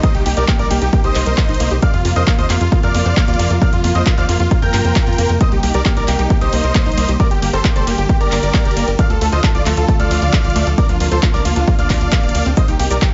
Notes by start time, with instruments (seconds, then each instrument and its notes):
Already playing: string section C3 G3 A#3 D#4, downlifter
0.03 synth pluck A#3, supersaw synth C5 D#5, grand piano D#6, kick, closed hi-hat
0.14 analog synth bass C2, synth pluck D#4, supersaw synth G4, grand piano G5, closed hi-hat
0.26 analog synth bass C2, synth pluck A#3, supersaw synth G4, grand piano G5, open hi-hat, ride
0.37 analog synth bass C2, synth pluck G4, supersaw synth A#4 D5, grand piano D6, closed hi-hat
0.48 synth pluck A#3, supersaw synth G4, grand piano G5, kick, clap, closed hi-hat
0.59 analog synth bass A#1, supersaw synth A#4 D5, synth pluck A#4, grand piano D6, closed hi-hat
0.71 analog synth bass C2, synth pluck A#3, supersaw synth G4, grand piano G5, open hi-hat, ride
0.82 analog synth bass C2, synth pluck D#4, supersaw synth G4, grand piano G5, closed hi-hat
0.93 synth pluck A#3, supersaw synth G4, grand piano G5, kick, closed hi-hat
1.04 analog synth bass C2, synth pluck G4, supersaw synth C5 D#5, grand piano D#6, closed hi-hat
1.15 analog synth bass C2, synth pluck A#3, clap, open hi-hat, ride
1.26 analog synth bass C2, synth pluck A#4, closed hi-hat
1.38 synth pluck A#3, kick, clap, closed hi-hat
1.49 analog synth bass A#1, synth pluck D#4, closed hi-hat
1.54 closed hi-hat
1.60 analog synth bass C2, synth pluck A#3, open hi-hat, ride
1.71 analog synth bass C2, synth pluck G4, closed hi-hat
1.82 string section F3 F4, synth pluck A#3, supersaw synth D5 F5, grand piano F6, kick, closed hi-hat
1.94 analog synth bass F2, synth pluck F4, supersaw synth F4, grand piano F5, closed hi-hat
2.05 analog synth bass F2, synth pluck A#3, supersaw synth F4, grand piano F5, open hi-hat, ride
2.16 analog synth bass F2, synth pluck A#4, supersaw synth C5 D#5, grand piano D#6, closed hi-hat
2.27 synth pluck A#3, supersaw synth F4, grand piano F5, kick, clap, closed hi-hat
2.38 analog synth bass D#2, synth pluck C5, supersaw synth C5 D#5, grand piano D#6, closed hi-hat
2.50 analog synth bass F2, synth pluck A#3, supersaw synth F4, grand piano F5, clap, open hi-hat, ride
2.61 analog synth bass F2, supersaw synth F4, synth pluck F4, grand piano F5, closed hi-hat
2.72 synth pluck A#3, supersaw synth F4, grand piano F5, kick, closed hi-hat
2.83 analog synth bass F2, synth pluck A#4, supersaw synth D5 F5, grand piano F6, closed hi-hat
2.94 analog synth bass F2, synth pluck A#3, open hi-hat, ride
3.06 analog synth bass F2, synth pluck C5, closed hi-hat
3.17 synth pluck A#3, kick, clap, closed hi-hat
3.28 analog synth bass D#2, synth pluck F4, closed hi-hat
3.34 closed hi-hat
3.39 analog synth bass F2, synth pluck A#3, open hi-hat, ride
3.50 analog synth bass F2, synth pluck A#4, closed hi-hat
3.62 synth pluck A#3, supersaw synth D5 F5, grand piano F6, kick, closed hi-hat
3.73 analog synth bass F2, synth pluck F4, supersaw synth F4, grand piano F5, closed hi-hat
3.84 analog synth bass F2, synth pluck A#3, supersaw synth F4, grand piano F5, open hi-hat, ride
3.95 analog synth bass F2, synth pluck A#4, supersaw synth C5 D#5, grand piano D#6, closed hi-hat
4.06 synth pluck A#3, supersaw synth F4, grand piano F5, kick, clap, closed hi-hat
4.17 analog synth bass D#2, synth pluck C5, supersaw synth D5 F5, grand piano F6, closed hi-hat
4.29 analog synth bass F2, synth pluck A#3, supersaw synth F4, grand piano F5, open hi-hat, ride
4.40 analog synth bass F2, synth pluck F4, supersaw synth F4, grand piano F5, closed hi-hat
4.51 synth pluck A#3, supersaw synth F4, grand piano F5, kick, closed hi-hat
4.62 analog synth bass F2, synth pluck A#4, supersaw synth A#4 G5, grand piano G6, closed hi-hat
4.74 analog synth bass G2, synth pluck A#3, clap, open hi-hat, ride
4.85 analog synth bass F2, synth pluck C5, closed hi-hat
4.96 synth pluck A#3, kick, clap, closed hi-hat
5.07 analog synth bass F2, synth pluck F4, closed hi-hat
5.13 closed hi-hat
5.18 analog synth bass F2, synth pluck A#3, open hi-hat, ride
5.29 analog synth bass F2, synth pluck A#4, closed hi-hat
5.41 string section G3 D#4, synth pluck A#3, supersaw synth C5 D#5, grand piano D#6, kick, closed hi-hat
5.52 analog synth bass C2, synth pluck D#4, supersaw synth G4, grand piano G5, closed hi-hat
5.63 analog synth bass C2, synth pluck A#3, supersaw synth G4, grand piano G5, open hi-hat, ride
5.74 analog synth bass C2, synth pluck G4, supersaw synth A#4 D5, grand piano D6, closed hi-hat
5.85 synth pluck A#3, supersaw synth G4, grand piano G5, kick, clap, closed hi-hat
5.97 analog synth bass A#1, synth pluck A#4, supersaw synth A#4 D5, grand piano D6, closed hi-hat
6.08 analog synth bass C2, synth pluck A#3, supersaw synth G4, grand piano G5, clap, open hi-hat, ride
6.19 analog synth bass C2, synth pluck D#4, supersaw synth G4, grand piano G5, closed hi-hat
6.30 synth pluck A#3, supersaw synth G4, grand piano G5, kick, closed hi-hat
6.41 analog synth bass C2, synth pluck G4, supersaw synth C5 D#5, grand piano D#6, closed hi-hat
6.53 analog synth bass C2, synth pluck A#3, open hi-hat, ride
6.64 analog synth bass C2, synth pluck A#4, closed hi-hat
6.75 synth pluck A#3, kick, clap, closed hi-hat
6.86 analog synth bass A#1, synth pluck D#4, closed hi-hat
6.92 closed hi-hat
6.97 analog synth bass C2, synth pluck A#3, open hi-hat, ride
7.09 analog synth bass C2, synth pluck G4, closed hi-hat
7.20 string section D3 G4, synth pluck A#3, supersaw synth A#4 D5, grand piano D6, kick, closed hi-hat
7.31 analog synth bass G1, synth pluck G4, supersaw synth G4, grand piano G5, closed hi-hat
7.42 analog synth bass G1, synth pluck A#3, supersaw synth G4, grand piano G5, open hi-hat, ride
7.53 analog synth bass G1, supersaw synth A4 C5, synth pluck A#4, grand piano C6, closed hi-hat
7.65 synth pluck A#3, supersaw synth G4, grand piano G5, kick, clap, closed hi-hat
7.76 analog synth bass F1, supersaw synth A4 C5, synth pluck D5, grand piano C6, closed hi-hat
7.87 analog synth bass G1, synth pluck A#3, supersaw synth G4, grand piano G5, open hi-hat, ride
7.98 analog synth bass G1, synth pluck G4, supersaw synth G4, grand piano G5, closed hi-hat
8.09 synth pluck A#3, supersaw synth G4, grand piano G5, kick, closed hi-hat
8.21 analog synth bass G1, supersaw synth A#4 D5, synth pluck A#4, grand piano D6, closed hi-hat
8.32 analog synth bass G1, synth pluck A#3, clap, open hi-hat, ride
8.43 analog synth bass G1, synth pluck D5, closed hi-hat
8.54 synth pluck A#3, kick, clap, closed hi-hat
8.65 analog synth bass F1, synth pluck G4, closed hi-hat
8.71 closed hi-hat
8.76 analog synth bass G1, synth pluck A#3, open hi-hat, ride
8.88 analog synth bass G1, synth pluck A#4, closed hi-hat
8.99 string section D3 F3 A3 F4, synth pluck A3, supersaw synth D5 F5, grand piano F6, kick, closed hi-hat
9.10 analog synth bass D2, synth pluck F4, supersaw synth A4, grand piano A5, closed hi-hat
9.21 analog synth bass D2, synth pluck A3, supersaw synth A4, grand piano A5, open hi-hat, ride
9.32 analog synth bass D2, synth pluck A4, supersaw synth C5 D#5, grand piano D#6, closed hi-hat
9.44 synth pluck A3, supersaw synth A4, grand piano A5, kick, clap, closed hi-hat
9.55 analog synth bass C2, supersaw synth F4 D5, synth pluck D5, grand piano D6, closed hi-hat
9.66 analog synth bass D2, synth pluck A3, supersaw synth A4, grand piano A5, clap, open hi-hat, ride
9.77 analog synth bass D2, synth pluck F4, supersaw synth A4, grand piano A5, closed hi-hat
9.88 synth pluck A3, supersaw synth A4, grand piano A5, kick, closed hi-hat
10.00 analog synth bass D2, synth pluck A4, supersaw synth D5 F5, grand piano F6, closed hi-hat
10.11 analog synth bass D2, synth pluck A3, open hi-hat, ride
10.22 analog synth bass D2, synth pluck D5, closed hi-hat
10.33 synth pluck A3, kick, clap, closed hi-hat
10.44 analog synth bass C2, synth pluck F4, closed hi-hat
10.50 closed hi-hat
10.56 analog synth bass D2, synth pluck A3, open hi-hat, ride
10.67 analog synth bass D2, synth pluck A4, closed hi-hat
10.78 string section C3 A#3 D4, synth pluck A#3, supersaw synth A#4 D5, grand piano D6, kick, closed hi-hat
10.89 analog synth bass D2, synth pluck D4, supersaw synth F4, grand piano F5, closed hi-hat
11.00 analog synth bass D2, synth pluck A#3, supersaw synth F4, grand piano F5, open hi-hat, ride
11.12 analog synth bass D2, synth pluck F4, supersaw synth A4 C5, grand piano C6, closed hi-hat
11.23 synth pluck A#3, supersaw synth F4, grand piano F5, kick, clap, closed hi-hat
11.34 analog synth bass C2, supersaw synth A#4 D5, synth pluck A#4, grand piano D6, closed hi-hat
11.45 analog synth bass D2, synth pluck A#3, supersaw synth F4, grand piano F5, open hi-hat, ride
11.56 analog synth bass D2, synth pluck D4, supersaw synth F4, grand piano F5, closed hi-hat
11.67 synth pluck A#3, supersaw synth F4, grand piano F5, kick, closed hi-hat
11.79 analog synth bass D2, synth pluck F4, supersaw synth D5 F5, grand piano F6, closed hi-hat
11.90 analog synth bass D2, synth pluck F4, kick, clap, open hi-hat, ride
12.01 analog synth bass D2, synth pluck F4, closed hi-hat
12.12 synth pluck A#3, kick, clap, closed hi-hat
12.23 analog synth bass D1, synth pluck A#3, closed hi-hat
12.29 closed hi-hat
12.35 analog synth bass D2, synth pluck A#3, open hi-hat, ride
12.46 analog synth bass D2, synth pluck C4, closed hi-hat
12.57 string section G3 A#3 D#4, synth pluck A#3, supersaw synth C5 D#5, grand piano D#6, kick, closed hi-hat, cabasa
12.68 analog synth bass C2, synth pluck D#4, supersaw synth G4, grand piano G5, closed hi-hat, cabasa
12.79 analog synth bass C2, synth pluck A#3, supersaw synth G4, grand piano G5, open hi-hat, ride
12.90 analog synth bass C2, synth pluck G4, supersaw synth A#4 D5, grand piano D6, closed hi-hat, cabasa
13.02 synth pluck A#3, supersaw synth G4, grand piano G5, kick, clap, closed hi-hat, cabasa